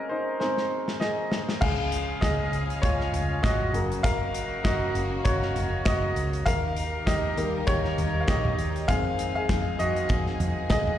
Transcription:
0.00 0.39 G#3 soft
0.00 0.39 A#3 soft
0.00 0.40 C4 soft
0.00 1.64 C#4 medium
0.00 0.11 D#4 medium
0.00 1.02 G#4 medium
0.00 0.12 A#4 medium
0.00 0.09 C5 medium
0.00 1.00 D#5 medium
0.09 0.39 D#4 medium
0.09 0.38 C5 medium
0.40 0.68 G#3 soft
0.40 0.68 A#3 soft
0.40 0.68 C4 soft
0.40 1.28 D#4 medium
0.40 1.27 C5 medium
0.40 snare soft
0.57 snare soft
0.88 snare medium
1.00 1.58 G#4 medium
1.00 1.63 D#5 medium
1.00 snare medium
1.32 snare medium
1.49 snare medium
1.61 2.12 C#2 medium
1.61 3.71 C#3 medium
1.61 2.03 C#3 medium
1.61 2.04 F3 soft
1.61 2.04 G#3 medium
1.61 3.72 C#4 medium
1.61 3.71 G#4 medium
1.61 2.19 G#4 medium
1.61 2.18 F5 loud
1.61 3.71 F5 medium
1.61 kick loud
1.61 crash medium
1.92 closed hi-hat medium
2.21 2.47 C#2 medium
2.21 2.79 G#4 medium
2.21 2.84 D#5 medium
2.21 kick loud
2.21 snare loud
2.21 closed hi-hat medium
2.52 2.77 C#2 medium
2.52 closed hi-hat medium
2.70 closed hi-hat soft
2.82 3.08 C#2 medium
2.82 3.40 F4 medium
2.82 3.45 C#5 medium
2.82 kick loud
2.82 closed hi-hat medium
3.00 snare soft
3.13 3.38 C#2 medium
3.13 closed hi-hat medium
3.13 floor tom medium
3.43 3.69 G#1 medium
3.43 4.01 F#4 medium
3.43 4.06 D#5 medium
3.43 kick loud
3.43 snare medium
3.43 closed hi-hat medium
3.61 floor tom medium
3.73 4.48 F#1 medium
3.73 4.60 C#3 medium
3.73 4.61 F#3 soft
3.73 6.44 A#3 medium
3.73 4.61 A#3 medium
3.73 6.44 C#4 medium
3.73 6.44 F#4 medium
3.73 closed hi-hat medium
3.92 closed hi-hat medium
4.03 4.61 A#4 medium
4.03 4.66 F5 loud
4.03 kick loud
4.03 closed hi-hat medium
4.34 closed hi-hat medium
4.64 4.90 F#1 medium
4.64 5.22 F#4 medium
4.64 5.21 D#5 medium
4.64 kick loud
4.64 snare loud
4.64 closed hi-hat medium
4.95 5.20 F#1 medium
4.95 closed hi-hat medium
5.24 5.50 F#1 medium
5.24 5.82 F#4 medium
5.24 5.87 C#5 medium
5.24 kick loud
5.24 closed hi-hat medium
5.42 snare soft
5.55 5.80 F#1 loud
5.55 closed hi-hat medium
5.55 floor tom medium
5.85 6.11 F#1 medium
5.85 6.43 F#4 medium
5.85 6.48 D#5 medium
5.85 kick loud
5.85 snare loud
5.85 closed hi-hat medium
6.16 6.41 C#2 medium
6.16 closed hi-hat medium
6.33 closed hi-hat soft
6.46 6.96 D#2 loud
6.46 8.86 D#3 medium
6.46 10.98 D#4 medium
6.46 8.86 G4 medium
6.46 8.86 A#4 medium
6.46 7.03 A#4 medium
6.46 7.08 F5 loud
6.46 kick loud
6.46 closed hi-hat medium
6.76 closed hi-hat medium
7.06 7.32 D#2 loud
7.06 7.64 G4 medium
7.06 7.69 D#5 medium
7.06 kick loud
7.06 snare loud
7.06 closed hi-hat medium
7.37 7.62 D#2 medium
7.37 8.84 D#3 soft
7.37 8.85 G3 soft
7.37 8.85 A#3 medium
7.37 closed hi-hat medium
7.67 7.92 D#2 loud
7.67 8.19 G4 medium
7.67 8.23 C#5 loud
7.67 kick loud
7.67 closed hi-hat medium
7.84 snare soft
7.98 8.23 D#2 medium
7.98 closed hi-hat medium
7.98 floor tom medium
8.21 8.27 F5 medium
8.28 8.53 A#1 medium
8.28 8.85 G4 medium
8.28 8.90 D#5 medium
8.28 kick loud
8.28 snare loud
8.28 closed hi-hat medium
8.45 floor tom medium
8.58 8.83 D#2 medium
8.58 closed hi-hat medium
8.76 closed hi-hat soft
8.88 9.38 F2 loud
8.88 9.75 D#3 medium
8.88 10.98 D#3 medium
8.88 9.76 G#3 medium
8.88 10.98 C4 medium
8.88 9.76 C4 medium
8.88 10.98 G#4 medium
8.88 9.33 G#4 medium
8.88 9.32 F5 loud
8.88 kick loud
8.88 closed hi-hat medium
9.19 closed hi-hat medium
9.35 9.77 G#4 medium
9.35 9.81 F5 medium
9.49 9.74 F2 loud
9.49 kick loud
9.49 snare loud
9.49 closed hi-hat medium
9.79 10.04 F2 medium
9.79 10.67 F#4 medium
9.79 10.66 D#5 medium
9.79 closed hi-hat medium
9.96 closed hi-hat soft
10.09 10.35 F2 medium
10.09 kick loud
10.09 closed hi-hat medium
10.27 snare soft
10.40 10.65 F2 medium
10.40 closed hi-hat medium
10.40 floor tom medium
10.70 10.95 C2 medium
10.70 10.98 G#4 medium
10.70 10.98 D#5 medium
10.70 kick loud
10.70 snare loud
10.70 closed hi-hat medium
10.87 floor tom medium

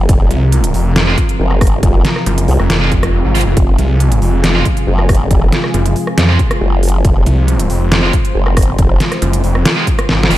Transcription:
0.00 10.38 C3 medium
0.00 10.38 F3 medium
0.00 10.38 G#3 medium
0.00 10.38 F4 medium
0.09 0.29 F1 loud
0.09 3.56 A#4 medium
0.09 kick loud
0.09 closed hi-hat medium
0.31 0.73 C2 loud
0.31 closed hi-hat medium
0.52 closed hi-hat medium
0.64 closed hi-hat medium
0.74 1.16 F1 loud
0.74 open hi-hat medium
0.96 snare loud
0.96 closed hi-hat medium
1.07 1.16 G#3 medium
1.07 1.16 C4 medium
1.07 1.16 F4 medium
1.18 kick medium
1.18 closed hi-hat medium
1.29 closed hi-hat soft
1.40 1.81 F#1 medium
1.51 cross-stick medium
1.61 kick loud
1.61 cross-stick medium
1.61 open hi-hat medium
1.67 closed hi-hat medium
1.83 2.03 F1 loud
1.83 kick loud
1.83 closed hi-hat medium
2.05 snare medium
2.05 closed hi-hat medium
2.16 cross-stick soft
2.26 2.47 F#1 medium
2.26 closed hi-hat medium
2.38 closed hi-hat medium
2.48 2.58 C2 loud
2.48 open hi-hat medium
2.60 3.23 F1 loud
2.60 cross-stick medium
2.70 snare loud
2.70 closed hi-hat medium
2.81 2.90 G#3 medium
2.81 2.90 C4 medium
2.81 2.90 F4 medium
2.92 kick medium
2.92 closed hi-hat medium
3.03 cross-stick medium
3.03 closed hi-hat soft
3.25 3.45 G#1 medium
3.35 3.41 G#3 medium
3.35 3.41 C4 medium
3.35 3.41 F4 loud
3.35 open hi-hat medium
3.41 closed hi-hat medium
3.47 3.55 F1 loud
3.57 3.77 F1 loud
3.57 7.03 G#4 medium
3.57 kick loud
3.57 closed hi-hat medium
3.79 4.20 C2 loud
3.79 closed hi-hat medium
4.00 closed hi-hat medium
4.12 closed hi-hat medium
4.22 4.64 F1 loud
4.22 open hi-hat medium
4.44 snare loud
4.44 closed hi-hat medium
4.55 4.64 G#3 medium
4.55 4.64 C4 medium
4.55 4.64 F4 loud
4.65 kick medium
4.65 closed hi-hat medium
4.77 closed hi-hat soft
4.87 5.29 F#1 loud
4.99 cross-stick medium
5.09 kick loud
5.09 cross-stick medium
5.09 open hi-hat medium
5.15 closed hi-hat medium
5.31 5.51 F1 loud
5.31 kick loud
5.31 closed hi-hat medium
5.52 snare medium
5.52 closed hi-hat medium
5.64 cross-stick medium
5.74 5.94 F#1 loud
5.74 closed hi-hat medium
5.86 closed hi-hat medium
5.96 open hi-hat medium
6.07 cross-stick medium
6.18 6.38 F2 loud
6.18 snare loud
6.18 closed hi-hat medium
6.29 6.37 G#3 medium
6.29 6.37 C4 medium
6.29 6.37 F4 medium
6.39 kick medium
6.39 closed hi-hat medium
6.51 cross-stick medium
6.51 closed hi-hat soft
6.61 7.03 F#1 medium
6.83 open hi-hat medium
6.89 closed hi-hat medium
7.05 7.25 F1 loud
7.05 10.38 C5 medium
7.05 kick loud
7.05 closed hi-hat medium
7.26 7.68 C2 loud
7.26 closed hi-hat medium
7.48 closed hi-hat medium
7.60 closed hi-hat medium
7.70 8.12 F1 medium
7.70 open hi-hat medium
7.92 snare loud
7.92 closed hi-hat medium
8.03 8.11 G#3 medium
8.03 8.11 C4 medium
8.03 8.11 F4 loud
8.13 kick medium
8.13 closed hi-hat medium
8.25 closed hi-hat soft
8.35 8.77 F#1 loud
8.46 cross-stick medium
8.57 kick loud
8.57 cross-stick medium
8.57 open hi-hat loud
8.63 closed hi-hat medium
8.79 8.99 F1 loud
8.79 kick loud
8.79 closed hi-hat medium
9.00 snare medium
9.00 closed hi-hat medium
9.12 cross-stick medium
9.12 closed hi-hat soft
9.22 9.42 F#1 loud
9.22 closed hi-hat medium
9.33 closed hi-hat medium
9.44 9.64 F1 loud
9.44 open hi-hat medium
9.55 cross-stick medium
9.65 snare loud
9.65 closed hi-hat medium
9.77 9.85 G#3 medium
9.77 9.85 C4 medium
9.77 9.85 F4 medium
9.87 kick medium
9.87 closed hi-hat medium
9.99 cross-stick medium
9.99 closed hi-hat soft
10.09 10.29 G#1 loud
10.09 snare medium
10.23 snare medium
10.30 10.38 F1 loud
10.30 10.36 G#3 medium
10.30 10.37 C4 medium
10.30 10.37 F4 loud
10.30 open hi-hat loud

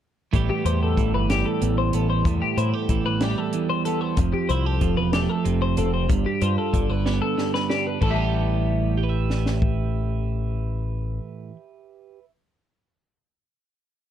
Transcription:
0.33 0.48 A1 medium
0.33 1.61 A2 medium
0.33 0.97 E3 medium
0.33 1.30 G3 soft
0.33 1.92 B3 medium
0.33 0.66 G4 medium
0.33 kick medium
0.33 closed hi-hat medium
0.50 0.66 G4 medium
0.65 0.95 E2 medium
0.65 2.22 G4 medium
0.65 0.82 C5 medium
0.65 closed hi-hat medium
0.83 1.14 A4 medium
0.97 1.12 A1 medium
0.97 2.90 E3 medium
0.97 kick medium
0.97 closed hi-hat medium
1.14 1.43 G1 medium
1.14 1.30 B4 medium
1.30 3.22 G3 medium
1.30 1.46 G4 medium
1.30 snare loud
1.30 closed hi-hat medium
1.46 1.78 A4 medium
1.61 1.91 A1 medium
1.61 2.25 E2 medium
1.61 closed hi-hat medium
1.78 1.95 C5 medium
1.93 2.23 A1 medium
1.93 3.85 B3 medium
1.93 2.09 A4 medium
1.93 closed hi-hat medium
2.10 2.26 C5 medium
2.25 2.40 E2 medium
2.25 3.54 A2 medium
2.25 kick loud
2.25 closed hi-hat medium
2.42 2.58 G4 medium
2.57 2.72 A2 medium
2.57 2.74 E4 medium
2.57 2.73 C5 medium
2.57 closed hi-hat medium
2.73 4.18 G4 soft
2.73 3.05 A4 medium
2.89 3.04 A1 medium
2.89 4.14 E3 medium
2.89 kick medium
2.89 closed hi-hat medium
3.04 3.34 A1 medium
3.04 3.22 B4 medium
3.21 4.18 G3 medium
3.21 3.38 G4 medium
3.21 snare loud
3.21 closed hi-hat medium
3.38 3.69 A4 medium
3.53 4.18 E2 medium
3.53 closed hi-hat medium
3.70 3.85 C5 medium
3.85 4.18 B3 soft
3.85 4.01 A4 medium
3.85 closed hi-hat medium
4.01 4.17 C5 medium
4.17 4.32 F1 medium
4.17 6.06 F2 medium
4.17 kick loud
4.17 closed hi-hat medium
4.33 4.49 G4 medium
4.49 4.79 C2 medium
4.49 4.66 E4 medium
4.49 4.65 C5 medium
4.49 closed hi-hat medium
4.65 6.10 G4 soft
4.65 4.97 A4 medium
4.81 4.96 F1 medium
4.81 6.06 F3 medium
4.81 kick medium
4.81 closed hi-hat soft
4.97 5.27 E1 medium
4.97 5.13 B4 medium
5.13 6.12 A3 medium
5.13 5.30 G4 medium
5.13 snare loud
5.13 closed hi-hat medium
5.30 5.61 A4 medium
5.45 5.75 F1 medium
5.45 6.05 C3 medium
5.45 closed hi-hat medium
5.62 5.78 C5 medium
5.77 6.07 F1 medium
5.77 6.06 C4 soft
5.77 5.93 A4 medium
5.77 closed hi-hat medium
5.94 6.10 C5 medium
6.09 6.24 G1 medium
6.09 7.36 G2 medium
6.09 kick loud
6.09 closed hi-hat medium
6.26 6.42 G4 medium
6.42 6.56 G2 medium
6.42 7.98 F4 medium
6.42 6.58 C5 medium
6.42 closed hi-hat medium
6.58 6.90 A4 medium
6.73 6.88 G1 medium
6.73 8.01 D3 medium
6.73 kick medium
6.73 closed hi-hat medium
6.90 7.19 G1 medium
6.90 7.05 B4 medium
7.05 7.98 B3 medium
7.05 7.21 G4 medium
7.05 snare medium
7.22 7.54 A4 medium
7.38 7.98 G2 medium
7.38 snare medium
7.54 7.70 B4 medium
7.54 snare medium
7.70 7.98 D4 medium
7.70 7.86 G4 medium
7.70 snare medium
7.87 8.02 B4 medium
8.01 11.19 A1 medium
8.01 11.51 A2 medium
8.01 8.14 A4 medium
8.01 kick medium
8.01 crash medium
8.06 11.56 E3 medium
8.11 8.97 G3 medium
8.11 11.27 E5 medium
8.15 9.03 B3 soft
8.15 11.31 A5 medium
8.21 8.98 G4 medium
8.98 12.18 G4 medium
9.04 12.25 B4 medium
9.09 12.30 E5 medium
9.30 snare medium
9.46 snare medium
9.62 kick medium

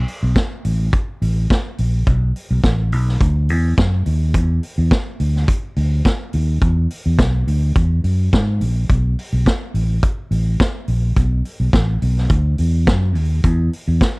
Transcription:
0.08 open hi-hat medium
0.23 0.34 B1 loud
0.36 kick loud
0.36 snare loud
0.36 closed hi-hat medium
0.65 0.89 A1 medium
0.65 open hi-hat medium
0.93 kick loud
0.93 closed hi-hat medium
1.22 1.46 A1 medium
1.22 open hi-hat medium
1.50 kick loud
1.50 snare medium
1.50 closed hi-hat medium
1.78 2.03 A#1 medium
1.78 open hi-hat medium
2.07 2.31 B1 medium
2.07 kick medium
2.07 closed hi-hat medium
2.36 open hi-hat medium
2.51 2.62 B1 loud
2.64 2.92 A1 medium
2.64 kick medium
2.64 snare medium
2.64 closed hi-hat medium
2.92 3.16 B1 medium
2.92 open hi-hat medium
3.08 snare soft
3.21 3.50 D2 medium
3.21 kick loud
3.21 closed hi-hat medium
3.49 3.74 E2 medium
3.49 open hi-hat medium
3.78 4.02 F#2 medium
3.78 kick loud
3.78 snare loud
3.78 closed hi-hat medium
4.06 4.35 D#2 medium
4.06 open hi-hat medium
4.34 4.59 E2 medium
4.34 kick medium
4.34 closed hi-hat medium
4.63 open hi-hat medium
4.78 4.89 E2 loud
4.91 kick loud
4.91 snare loud
4.91 closed hi-hat medium
5.20 5.44 D2 medium
5.20 open hi-hat medium
5.36 snare soft
5.48 kick loud
5.48 closed hi-hat medium
5.76 6.01 D2 medium
5.76 open hi-hat medium
6.05 kick medium
6.05 snare loud
6.05 closed hi-hat medium
6.33 6.58 D#2 medium
6.33 open hi-hat medium
6.61 6.86 E2 medium
6.61 kick loud
6.61 closed hi-hat medium
6.90 open hi-hat medium
7.06 7.17 E2 medium
7.19 7.43 B1 medium
7.19 kick loud
7.19 snare loud
7.19 closed hi-hat medium
7.47 7.71 D2 medium
7.47 open hi-hat medium
7.76 8.00 E2 medium
7.76 kick loud
7.76 closed hi-hat medium
8.04 8.28 F#2 medium
8.04 open hi-hat medium
8.33 8.62 G#2 medium
8.33 kick medium
8.33 snare loud
8.33 closed hi-hat medium
8.61 8.85 A#1 medium
8.61 open hi-hat medium
8.89 9.14 B1 medium
8.89 kick medium
8.89 closed hi-hat medium
9.19 open hi-hat medium
9.33 9.44 B1 loud
9.46 kick medium
9.46 snare loud
9.46 closed hi-hat soft
9.74 9.98 A1 medium
9.74 open hi-hat medium
10.03 kick loud
10.03 closed hi-hat medium
10.31 10.55 A1 medium
10.31 open hi-hat medium
10.60 kick loud
10.60 snare loud
10.60 closed hi-hat medium
10.88 11.12 A#1 medium
10.88 open hi-hat medium
11.16 11.41 B1 medium
11.16 kick loud
11.16 closed hi-hat medium
11.45 open hi-hat medium
11.60 11.71 B1 medium
11.73 11.97 A1 medium
11.73 kick loud
11.73 snare loud
11.73 closed hi-hat soft
12.02 12.26 B1 loud
12.02 open hi-hat medium
12.17 snare soft
12.30 12.54 D2 medium
12.30 kick loud
12.30 closed hi-hat medium
12.58 12.87 E2 medium
12.58 open hi-hat medium
12.87 13.16 F#2 medium
12.87 kick loud
12.87 snare loud
12.87 closed hi-hat medium
13.15 13.40 D#2 medium
13.15 open hi-hat medium
13.44 13.68 E2 medium
13.44 kick medium
13.44 closed hi-hat medium
13.73 open hi-hat medium
13.88 13.99 E2 loud
14.01 kick medium
14.01 snare medium
14.01 closed hi-hat medium

